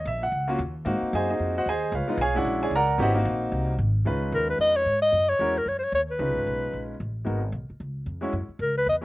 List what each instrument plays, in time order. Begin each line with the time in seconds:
0.05 upright bass A#1, grand piano E5
0.23 grand piano F#5
0.32 upright bass C#2
0.48 grand piano A#3 C#4 F4 F#4
0.59 upright bass D#2
0.85 upright bass G#2, grand piano A#3 C4 D#4 F#4
1.02 muted upright bass stroke
1.13 upright bass F#2, grand piano G#4 C5 D#5 G#5
1.30 grand piano D#4 G#4 C5 D#5
1.40 upright bass F2
1.58 grand piano F#4 C5 D#5 F#5
1.66 upright bass D#2, grand piano G#4 C5 D#5 G#5
1.92 upright bass C#2, grand piano F4 B4 C#5 F5
2.08 grand piano G#3 B3 D#4 F4, muted upright bass stroke
2.18 upright bass B1, grand piano G#5
2.22 grand piano G#4 C#5 F5
2.34 grand piano G#3 C#4 D4 E4 F#4 C#5 D5 F#5
2.44 upright bass A#1
2.63 grand piano G#4 C#5 D5 G#5
2.71 upright bass C#2
2.75 grand piano A#4 D5 F#5 A#5
2.98 upright bass G#1, grand piano B3 C#4 E4 G4 F#5
3.02 grand piano F#4 C5 D#5
3.14 grand piano A#3 C4 D#4 F#4
3.25 upright bass A#1
3.52 upright bass C2
3.79 upright bass G#1
4.05 upright bass C#2, grand piano G#3 C#4 D#4 F4 B4
4.32 upright bass D#2, clarinet A#4
4.50 clarinet B4
4.59 upright bass F2, clarinet D#5
4.76 clarinet C#5
4.86 upright bass G#2
5.02 clarinet D#5
5.12 upright bass F#2
5.29 clarinet C#5
5.39 upright bass E2, grand piano G#3 C#4 E4 F#4 A#4
5.58 clarinet A#4
5.66 upright bass F#2, clarinet C#5
5.79 clarinet C5
5.84 clarinet C#5
5.92 upright bass D#2, clarinet C#5
6.11 clarinet B4
6.19 upright bass C#2, grand piano G#3 C#4 D#4 F4 B4
6.29 upright bass B1
6.37 upright bass G#1
6.47 upright bass B1
6.73 upright bass A#1
7.00 upright bass A1
7.25 upright bass G#1, grand piano G#3 B3 D#4 F#4 A#4
7.52 upright bass B1
7.70 muted upright bass stroke
7.80 upright bass C#2
8.06 upright bass F2
8.21 grand piano G#3 C#4 E4 F#4 C#5
8.33 upright bass F#2
8.49 muted upright bass stroke
8.59 upright bass C#2, clarinet A#4
8.78 clarinet B4
8.86 upright bass E2, clarinet D#5
9.01 grand piano G#3 C#4